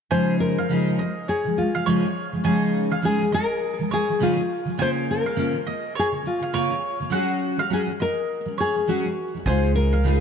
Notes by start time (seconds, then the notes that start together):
0.10 C#3 F3 G#3 C#4 D#4 G#4 C5 G#5
0.40 A#4
0.58 C#3 F3 G#3 F5
0.69 C#3 F3 G#3 C#4 D#4 G#4
0.99 C#3 F3 G#3 D#5
1.28 G#4 C#5
1.44 C#3 F3 G#3
1.56 C#3 F3 G#3 F4
1.74 C#3 F3 G#3 F5
1.86 C#3 F3 G#3 C#4 D#4 G#4 C#5
2.03 C#3 F3 G#3
2.32 C#3 F3 G#3
2.43 C#3 F3 G#3 C#4 D#4 G#4 G#5
2.90 C#3 F3 G#3 F5
3.02 C#3 F3 G#3 C#4 D#4 G#4
3.19 C#3 F3 G#3
3.31 C#3 F3 G#3 A#4 D#5
3.78 C#3 F3 G#3
3.90 C#3 F3 G#3 G#4 C#5
4.08 C#3 F3 G#3
4.19 C#3 F3 G#3 C#4 D#4 F4 G#4
4.36 C#3 F3 G#3
4.65 C#3 F3 G#3
4.78 C#3 A#3 C#4 F4 A#4 G#5
4.82 C5
5.11 A#4
5.24 C#3 A#3 F5
5.36 C#3 A#3 C#4 F4 A#4
5.53 C#3
5.65 C#3 A#3 D#5
5.95 G#4 C#5
6.12 C#3 A#3
6.23 C#3 A#3
6.27 F4
6.40 C#3 A#3 F5
6.53 C#3 A#3 C#4 F4 A#4 C#5
6.70 C#3 A#3
7.00 C#3 A#3
7.10 F#3 C#4 F#4 G#4 F#5
7.58 F#3 C#4 F5
7.70 F#3 C#4 F#4 G#4
7.87 F#3 C#4
7.99 F#3 C#4 A#4 D#5
8.46 F#3 C#4
8.57 F#3 C#4 G#4 C#5
8.75 F#3 C#4
8.88 F#3 C#4 F#4 G#4
9.05 F#3 C#4
9.34 F#3 C#4
9.46 C#2 C#3 G#3 D#4 F4 G#4 C5 G#5
9.75 A#4
9.92 C#3 G#3 F5
10.04 C#3 G#3 D#4 F4 G#4